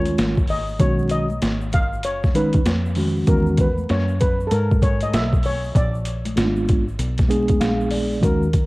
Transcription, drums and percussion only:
0.05 closed hi-hat, high conga, shaker
0.18 snare, closed hi-hat, shaker
0.37 kick, shaker
0.47 open hi-hat, low conga, shaker
0.68 shaker
0.79 kick, closed hi-hat, shaker
0.99 shaker
1.09 closed hi-hat, shaker
1.30 high conga, shaker
1.41 snare, closed hi-hat, shaker
1.61 shaker
1.72 kick, closed hi-hat, low conga, shaker
1.93 shaker
2.03 closed hi-hat, shaker
2.23 kick, snare, shaker
2.34 closed hi-hat, shaker
2.53 kick, closed hi-hat, high conga, shaker
2.65 snare, closed hi-hat, shaker
2.85 shaker
2.95 open hi-hat, low conga, shaker
3.16 shaker
3.27 kick, closed hi-hat, shaker
3.46 shaker
3.58 kick, closed hi-hat, shaker
3.78 high conga, shaker
3.89 snare, closed hi-hat, shaker
4.08 shaker
4.20 kick, closed hi-hat, low conga, shaker
4.40 shaker
4.51 closed hi-hat, shaker
4.71 kick, shaker
4.81 kick, closed hi-hat, shaker
5.01 closed hi-hat, high conga, shaker
5.13 snare, closed hi-hat, shaker
5.33 kick, shaker
5.43 open hi-hat, low conga, shaker
5.64 shaker
5.75 kick, closed hi-hat, shaker
5.94 shaker
6.05 closed hi-hat, shaker
6.25 closed hi-hat, high conga, shaker
6.37 snare, closed hi-hat, shaker
6.56 shaker
6.68 kick, closed hi-hat, low conga, shaker
6.88 shaker
6.99 closed hi-hat, shaker
7.18 kick, snare, closed hi-hat, shaker
7.29 closed hi-hat, shaker
7.48 kick, closed hi-hat, high conga, shaker
7.61 snare, closed hi-hat, shaker
7.81 shaker
7.90 open hi-hat, low conga, shaker
8.12 shaker
8.23 kick, closed hi-hat, shaker
8.42 shaker
8.53 kick, closed hi-hat, shaker

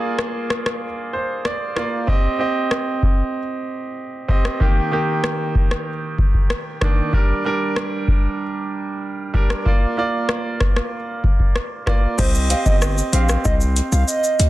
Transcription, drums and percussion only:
0.19 cross-stick
0.50 cross-stick
0.66 cross-stick
1.45 cross-stick
1.77 cross-stick
2.08 kick
2.71 cross-stick
3.03 kick
4.29 kick
4.45 cross-stick
4.61 kick
5.24 cross-stick
5.55 kick
5.71 cross-stick
6.19 kick
6.34 kick
6.50 cross-stick
6.82 kick, cross-stick
7.13 kick
7.76 cross-stick
8.08 kick
9.34 kick
9.50 cross-stick
9.66 kick
10.29 cross-stick
10.61 kick, cross-stick
10.76 cross-stick
11.24 kick
11.40 kick
11.56 cross-stick
11.87 kick, cross-stick
12.19 kick, crash, shaker
12.35 shaker
12.50 closed hi-hat, shaker
12.66 kick, shaker
12.82 cross-stick, shaker
12.98 shaker
13.13 closed hi-hat, shaker
13.29 cross-stick, shaker
13.45 kick, shaker
13.61 shaker
13.76 closed hi-hat, shaker
13.92 shaker
14.08 shaker
14.24 shaker
14.40 closed hi-hat, shaker

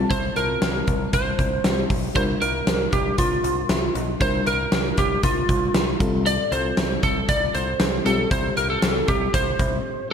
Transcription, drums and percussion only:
0.11 kick, closed hi-hat
0.36 closed hi-hat
0.62 snare, closed hi-hat
0.87 kick, closed hi-hat
1.13 kick, closed hi-hat
1.39 kick, closed hi-hat
1.64 snare, closed hi-hat
1.90 kick, open hi-hat
2.16 kick, closed hi-hat
2.42 closed hi-hat
2.67 snare, closed hi-hat
2.93 kick, closed hi-hat
3.18 kick, closed hi-hat
3.44 closed hi-hat
3.69 snare, closed hi-hat
3.95 closed hi-hat
4.21 kick, closed hi-hat
4.47 closed hi-hat
4.72 snare, closed hi-hat
4.97 kick, closed hi-hat
5.23 kick, closed hi-hat
5.49 kick, closed hi-hat
5.74 snare, closed hi-hat
6.00 kick, closed hi-hat
6.26 closed hi-hat
6.52 closed hi-hat
6.77 snare, closed hi-hat
7.03 kick, closed hi-hat
7.29 kick, closed hi-hat
7.54 closed hi-hat
7.80 snare, closed hi-hat
8.06 closed hi-hat
8.31 kick, closed hi-hat
8.57 closed hi-hat
8.82 snare, closed hi-hat
9.08 kick, closed hi-hat
9.34 kick, closed hi-hat
9.59 kick, closed hi-hat

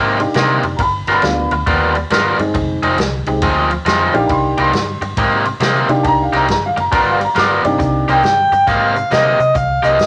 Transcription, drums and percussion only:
0.20 ride
0.34 snare, ride
0.63 ride
0.79 kick, ride
1.07 snare, ride
1.22 snare, ride
1.51 ride
1.67 kick, ride
1.95 ride
2.10 snare, ride
2.39 ride
2.54 kick, ride
2.83 ride
2.98 snare, ride
3.26 ride
3.42 kick, ride
3.71 ride
3.86 snare, ride
4.14 ride
4.29 kick, ride
4.58 ride
4.73 snare, ride
5.02 ride
5.17 kick, ride
5.45 ride
5.60 snare, ride
5.89 ride
6.04 kick, ride
6.33 snare, ride
6.48 kick, snare, ride
6.77 ride
6.92 kick, ride
7.21 ride
7.36 snare, ride
7.65 ride
7.80 kick, closed hi-hat
8.08 closed hi-hat
8.23 snare, closed hi-hat
8.52 closed hi-hat
8.67 kick, snare, closed hi-hat
8.96 closed hi-hat
9.11 snare, closed hi-hat
9.40 closed hi-hat
9.55 kick, closed hi-hat
9.84 closed hi-hat
9.99 snare, closed hi-hat

